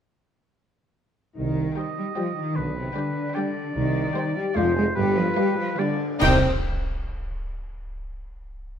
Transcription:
1.35 1.69 C2 medium
1.35 1.93 D#3 medium
1.35 1.93 D#4 medium
1.76 2.07 G3 soft
1.76 2.08 C5 medium
1.76 2.57 D#5 medium
1.76 2.06 G5 soft
1.97 2.05 G3 medium
1.97 2.18 G4 medium
2.16 2.37 F3 medium
2.16 2.47 G3 medium
2.16 2.25 F4 medium
2.16 2.47 C5 soft
2.16 2.46 G5 soft
2.36 2.56 D#3 medium
2.36 2.57 D#4 medium
2.56 2.88 B1 medium
2.56 2.89 B1 medium
2.56 2.77 D3 medium
2.56 2.77 D4 medium
2.56 3.36 B4 medium
2.76 2.96 C3 medium
2.76 2.85 C4 medium
2.96 3.74 D3 medium
2.96 3.26 G3 soft
2.96 3.74 D4 medium
2.96 3.26 D5 medium
2.96 3.26 G5 medium
3.34 3.66 G3 medium
3.34 3.65 D5 soft
3.34 4.58 D5 medium
3.34 3.66 G5 medium
3.75 4.08 C2 medium
3.75 4.35 D#3 medium
3.75 4.35 D#4 medium
4.15 4.45 G3 medium
4.15 4.46 C5 medium
4.15 4.46 G5 medium
4.35 4.43 G3 medium
4.35 4.57 G4 medium
4.55 4.88 F1 medium
4.55 4.88 F2 medium
4.55 4.76 F3 medium
4.55 4.86 G#3 medium
4.55 4.76 F4 medium
4.55 4.95 C5 medium
4.55 4.86 D5 medium
4.55 4.87 F5 medium
4.76 4.84 G#3 medium
4.76 4.85 G#4 loud
4.95 5.29 G1 medium
4.95 5.29 G2 medium
4.95 5.17 G3 medium
4.95 5.17 G4 loud
4.95 5.80 B4 medium
5.17 5.37 F3 medium
5.17 5.38 F4 loud
5.37 5.68 G3 medium
5.37 5.58 G3 medium
5.37 5.57 G4 loud
5.37 5.68 B4 medium
5.37 5.68 F5 medium
5.58 5.78 F3 medium
5.58 5.78 F4 medium
5.78 6.20 D3 medium
5.78 6.10 G3 medium
5.78 6.21 D4 medium
5.78 6.11 B4 medium
5.78 6.00 D5 medium
5.78 6.10 F5 medium
6.21 6.39 C2 medium
6.21 6.45 C2 medium
6.21 6.44 C4 medium
6.21 6.40 C4 medium
6.21 6.44 D#4 medium
6.21 6.39 G4 medium
6.21 6.45 C5 medium
6.21 6.44 G5 medium
6.21 concert bass drum medium
6.21 crash medium

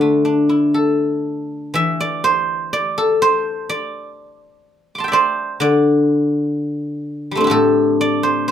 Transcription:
0.00 2.74 D3 soft
0.00 2.01 A3 soft
0.00 0.55 A4 medium
0.00 1.28 C5 medium
0.00 1.61 D5 medium
0.00 0.29 E5 medium
0.25 2.25 D4 soft
0.49 2.50 E4 soft
0.74 2.75 A4 soft
1.74 4.67 E3 soft
1.74 3.47 E5 medium
2.00 2.73 D5 medium
2.24 3.21 C5 medium
2.73 3.69 D5 medium
2.98 5.17 A4 medium
3.22 5.13 C5 medium
3.69 5.11 D5 medium
4.95 6.29 C6 soft
4.95 6.17 D6 soft
5.00 6.59 G5 soft
5.00 6.45 A5 soft
5.08 5.61 D5 soft
5.08 6.80 E5 soft
5.13 7.11 C5 medium
5.60 8.47 D3 medium
5.60 7.46 D5 medium
7.31 7.56 G3 soft
7.31 8.52 A3 soft
7.37 8.52 C4 soft
7.37 8.52 D4 soft
7.44 8.52 E4 soft
7.44 8.52 G4 medium
7.50 8.52 A2 medium
7.50 8.52 A4 medium
8.01 8.52 D5 medium
8.23 8.48 C5 medium
8.48 8.52 C5 medium

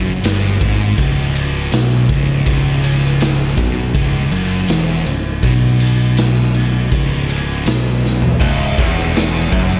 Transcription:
0.00 0.22 F#1 loud
0.00 0.23 F#2 loud
0.24 0.59 G1 medium
0.24 0.59 G2 medium
0.24 snare loud
0.24 ride loud
0.60 0.96 G#1 medium
0.60 0.97 G#2 loud
0.60 kick loud
0.60 ride medium
0.97 1.69 C#1 medium
0.97 1.71 C#2 loud
0.97 kick loud
0.97 ride loud
1.35 ride medium
1.72 2.07 B1 medium
1.72 2.09 B2 loud
1.72 snare loud
1.72 ride loud
2.09 2.44 C#1 loud
2.09 2.44 C#2 medium
2.09 kick loud
2.09 ride medium
2.45 3.54 C#1 medium
2.45 3.56 C#2 loud
2.45 kick loud
2.45 ride loud
2.84 ride medium
3.04 snare soft
3.21 snare loud
3.21 ride loud
3.57 3.93 B1 loud
3.57 3.93 B2 loud
3.57 kick loud
3.57 ride medium
3.94 4.30 C#1 medium
3.94 4.31 C#2 loud
3.94 kick loud
3.94 ride medium
4.32 4.67 F#1 medium
4.32 4.68 F#2 loud
4.32 ride medium
4.68 5.04 E1 loud
4.68 5.06 E2 loud
4.68 snare loud
4.68 ride medium
5.06 5.41 C#1 medium
5.06 5.36 C#2 medium
5.06 ride medium
5.43 6.88 B1 medium
5.43 6.91 B2 medium
5.43 kick loud
5.43 ride medium
5.80 ride medium
6.17 snare loud
6.17 ride loud
6.54 ride medium
6.92 7.63 C#1 medium
6.92 7.66 C#2 medium
6.92 kick loud
6.92 ride loud
7.30 ride medium
7.66 8.37 B1 medium
7.66 8.41 B2 loud
7.66 snare loud
7.66 ride loud
8.05 snare medium
8.22 floor tom medium
8.41 8.76 C#1 medium
8.41 8.80 C#2 loud
8.41 kick loud
8.41 crash loud
8.78 9.49 E1 loud
8.78 9.52 E2 loud
8.78 kick loud
8.78 crash medium
8.99 snare soft
9.15 snare loud
9.15 crash loud
9.52 9.80 F#1 loud
9.52 9.80 F#2 loud
9.52 kick loud
9.52 crash medium

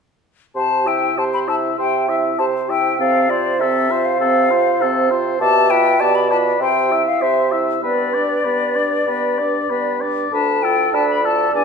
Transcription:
0.56 1.10 C3 soft
0.56 0.89 G4 soft
0.56 0.89 C5 soft
0.56 0.89 A5 soft
0.87 1.19 E4 soft
0.87 1.20 E5 soft
0.87 1.18 G5 soft
1.17 1.72 C3 soft
1.17 1.49 G4 soft
1.17 1.50 C5 soft
1.17 1.24 A5 soft
1.34 1.40 B5 soft
1.48 1.78 E4 soft
1.48 1.78 E5 soft
1.48 1.55 A5 soft
1.78 2.32 C3 soft
1.78 2.10 G4 soft
1.78 2.11 C5 soft
1.78 2.35 E5 soft
1.78 2.08 G5 soft
2.09 2.41 E4 soft
2.09 2.16 E5 soft
2.09 2.41 E5 soft
2.38 2.93 C3 soft
2.38 2.71 G4 soft
2.38 2.72 C5 soft
2.38 2.99 C5 soft
2.38 2.45 A5 medium
2.69 2.98 E4 soft
2.69 3.00 E5 soft
2.69 2.98 G5 soft
2.99 3.53 C3 soft
2.99 3.31 C4 soft
2.99 3.32 A4 soft
2.99 5.37 C5 soft
2.99 3.31 F5 soft
3.29 3.62 F4 soft
3.29 3.62 C5 soft
3.29 3.61 D5 medium
3.60 4.13 C3 soft
3.60 3.92 C4 soft
3.60 3.92 A4 soft
3.60 4.07 E5 soft
3.90 4.20 F4 soft
3.90 4.20 C5 soft
4.05 5.11 F5 soft
4.20 4.73 C3 soft
4.20 4.52 C4 soft
4.20 4.52 A4 soft
4.50 4.83 F4 soft
4.50 4.82 C5 soft
4.81 5.34 C3 soft
4.81 5.13 C4 soft
4.81 5.12 A4 soft
5.11 5.40 F4 soft
5.11 5.41 C5 soft
5.40 5.93 B2 soft
5.40 5.72 G4 soft
5.40 5.72 D5 soft
5.40 6.02 E5 medium
5.40 5.72 A5 medium
5.70 6.02 F4 soft
5.70 6.02 B4 soft
5.70 6.02 G5 medium
6.00 6.54 B2 soft
6.00 6.32 G4 soft
6.00 6.62 D5 soft
6.00 6.33 D5 soft
6.00 6.17 A5 medium
6.15 6.30 B5 medium
6.31 6.61 F4 soft
6.31 6.61 B4 soft
6.31 6.37 A5 medium
6.60 7.05 C3 soft
6.60 6.93 G4 soft
6.60 6.94 C5 soft
6.60 7.23 E5 soft
6.60 7.05 G5 medium
6.92 7.23 E4 soft
6.92 7.23 E5 soft
7.07 7.23 F5 soft
7.21 7.75 C3 soft
7.21 7.54 G4 soft
7.21 7.83 C5 soft
7.21 7.54 C5 soft
7.21 7.52 E5 soft
7.52 7.82 E4 soft
7.52 7.83 E5 soft
7.52 7.59 E5 soft
7.82 8.38 G2 soft
7.82 8.16 B3 soft
7.82 8.16 B4 soft
7.82 9.97 B4 soft
7.82 9.96 D5 soft
8.14 8.47 D4 soft
8.14 8.46 D5 soft
8.45 9.00 G2 soft
8.45 8.77 B3 soft
8.45 8.78 B4 soft
8.76 9.07 D4 soft
8.76 9.07 D5 soft
9.07 9.62 G2 soft
9.07 9.40 B3 soft
9.07 9.40 B4 soft
9.39 9.71 D4 soft
9.39 9.72 D5 soft
9.70 10.25 G2 soft
9.70 10.02 B3 soft
9.70 10.03 B4 soft
10.01 10.32 D4 soft
10.01 10.32 D5 soft
10.32 10.87 D2 soft
10.32 10.65 D4 soft
10.32 10.90 A4 soft
10.32 10.65 B4 soft
10.32 10.64 A5 soft
10.63 10.95 F4 soft
10.63 10.96 A4 soft
10.63 10.93 G5 soft
10.93 11.47 D2 soft
10.93 11.25 D4 soft
10.93 11.26 B4 soft
10.93 11.64 D5 soft
10.93 11.08 A5 soft
11.10 11.24 B5 soft
11.24 11.54 F4 soft
11.24 11.54 A4 soft
11.24 11.54 A5 soft
11.54 11.64 E2 soft
11.54 11.64 D4 soft
11.54 11.64 D5 soft
11.54 11.64 G#5 soft

